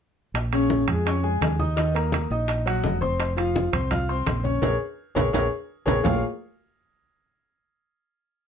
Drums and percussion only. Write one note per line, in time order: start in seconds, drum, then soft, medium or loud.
0.35 high bongo medium
0.35 high conga soft
0.35 high timbale medium
0.53 high conga soft
0.53 high timbale medium
0.70 high bongo medium
0.70 high conga medium
0.88 high conga soft
0.88 low conga medium
0.88 high timbale medium
1.07 high bongo medium
1.07 high timbale medium
1.24 high conga soft
1.41 high bongo medium
1.41 low bongo medium
1.41 high conga medium
1.41 high timbale medium
1.60 high conga medium
1.77 high bongo medium
1.77 high conga soft
1.77 high timbale medium
1.95 high bongo soft
1.95 high conga soft
1.95 high timbale medium
2.12 high bongo medium
2.12 high conga loud
2.12 high timbale medium
2.31 high bongo soft
2.31 high conga soft
2.48 high bongo medium
2.48 high timbale medium
2.67 high conga soft
2.67 high timbale medium
2.84 high bongo medium
2.84 low bongo medium
2.84 high conga medium
3.02 high bongo soft
3.02 high conga medium
3.20 high bongo medium
3.20 high timbale medium
3.38 high conga soft
3.38 high timbale medium
3.56 high bongo medium
3.56 high conga medium
3.73 high conga soft
3.73 low conga medium
3.73 high timbale loud
3.91 high bongo medium
3.91 high conga soft
3.91 low conga medium
3.91 high timbale medium
4.10 high conga soft
4.27 high bongo medium
4.27 low bongo medium
4.27 high conga medium
4.27 high timbale medium
4.45 high conga medium
4.62 high bongo medium
4.62 high conga medium
4.62 high timbale medium
5.16 high bongo loud
5.16 high conga loud
5.16 high timbale loud
5.34 high bongo medium
5.34 high conga medium
5.34 high timbale loud
5.88 high bongo loud
5.88 high conga loud
5.88 high timbale medium
6.05 low bongo loud
6.05 low conga medium
6.05 low timbale loud